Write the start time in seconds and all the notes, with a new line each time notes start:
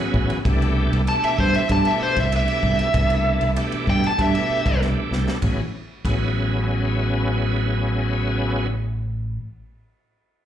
Already playing: C#3 F#3 B3 E4 G#4
0.14 A1, kick
0.30 ride
0.44 C2 B2 E3 A3 D4 G4, kick, ride
0.62 ride
0.92 C2, ride
1.07 B2 E3 A3 D4 G4 A5, ride
1.23 E5, muted fingered electric bass stroke, ride
1.39 G2 C5, kick
1.55 E5, muted fingered electric bass stroke, ride
1.69 G2 B2 E3 A3 D4 G4 A5, kick, ride
1.85 E5, ride
2.00 C5, muted fingered electric bass stroke
2.16 C2 E5, kick, ride
2.32 B2 E3 A3 D4 G4, ride
2.36 E5
2.48 ride
2.63 C2, kick
2.79 ride
2.94 C2 B2 E3 A3 D4 E4, kick, ride
3.10 ride
3.41 C2, ride
3.56 B2 E3 A3 D4 G4, ride
3.72 muted fingered electric bass stroke, ride
3.87 G2 G5, kick
4.04 A5, muted fingered electric bass stroke, ride
4.18 G2 B2 E3 A3 D4 G4, kick, ride
4.22 E5
4.35 ride
4.49 muted fingered electric bass stroke
4.66 C2, kick, ride
4.81 B2 E3 A3 D4 G4, snare
5.11 C2, snare
5.28 snare
5.42 A1 C#3 F#3 B3 E4 G#4, kick, ride
6.05 A1 C#3 F#3 B3 E4 G#4, kick, ride